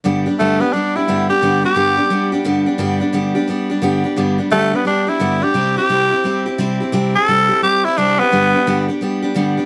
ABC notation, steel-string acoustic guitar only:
X:1
M:4/4
L:1/8
Q:"Swing" 1/4=174
K:G
V:1 name="Steel-string acoustic guitar"
[G,,D,G,B,DG] [G,B,DG] [G,,D,G,B,DG] [G,B,DG] [G,B,DG] [G,B,DG] [G,,D,G,B,DG] [G,B,DG] | [G,,D,G,B,DG] [G,B,DG] [G,,D,G,B,DG] [G,B,DG] [G,B,DG] [G,B,DG] [G,,D,G,B,DG] [G,B,DG] | [G,,D,G,B,DG] [G,B,DG] [G,,D,G,B,DG] [G,B,DG] [G,B,DG] [G,B,DG] [G,,D,G,B,DG] [G,B,DG] | [G,,D,G,B,DG] [G,B,DG] [G,,D,G,B,DG] [G,B,DG] [G,B,DG] [G,B,DG] [G,,D,G,B,DG] [G,B,DG] |
[C,G,CEG] [CEG] [C,G,CEG] [CEG] [G,CEG] [CEG] [C,G,CEG] [CEG] | [C,G,CEG] [EG] [C,G,CEG] [CEG] [G,CEG] [CEG] [C,G,CEG] [CEG] | [G,,D,G,B,DG] [G,B,DG] [G,,D,G,B,DG] [G,B,DG] [G,B,DG] [G,B,DG] [G,,D,G,B,DG] [G,B,DG] |]